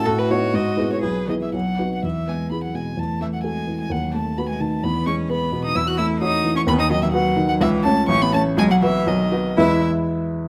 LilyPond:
<<
  \new Staff \with { instrumentName = "Violin" } { \time 2/4 \key e \major \tempo 4 = 127 a'16 b'16 cis''8 dis''8. cis''16 | b'8 dis''16 e''16 fis''8. fis''16 | e''8 gis''8 b''16 fis''16 gis''8 | a''8 e''16 fis''16 gis''8. gis''16 |
fis''8 a''8 b''16 gis''16 a''8 | b''8 cis'''8 b''8. dis'''16 | e'''16 fis'''16 e'''8 dis'''8. cis'''16 | b''16 dis'''16 dis''16 e''16 fis''8. fis''16 |
e''8 a''8 cis'''16 b''16 a''8 | gis''16 fis''16 e''8 dis''4 | e''8 r4. | }
  \new Staff \with { instrumentName = "Grand piano" } { \time 2/4 \key e \major a,8 <b dis' fis'>8 gis,8 <b e' gis'>8 | b,,8 <b e' gis'>8 b,,8 <b dis' fis'>8 | e,8 b8 <e' gis'>8 b,8 | e,8 a8 <fis' a'>8 e8 |
dis,8 a8 <fis' b'>8 dis8 | e,8 gis8 <gis' b'>8 b,8 | e,8 a8 <fis' cis''>8 e8 | dis,8 fis8 <fis' b'>8 dis8 |
cis,8 <cis' cis''>8 a,,8 <cis' cis''>8 | b,,8 <fis' b'>8 b,,8 <fis' b'>8 | <e, e gis e' b' e''>8 r4. | }
  \new Staff \with { instrumentName = "Cello" } { \clef bass \time 2/4 \key e \major fis'2 | gis'8 dis16 e16 fis8. fis16 | e8 gis8 b16 fis16 gis8 | a8 e16 fis16 gis8. gis16 |
fis8 a8 b16 gis16 a8 | b8 cis'8 b8. dis'16 | e'16 fis'16 e'8 dis'8. cis'16 | b16 dis'16 dis16 e16 fis8. fis16 |
e8 a8 cis'16 b16 a8 | gis16 fis16 e8 dis4 | e'8 r4. | }
>>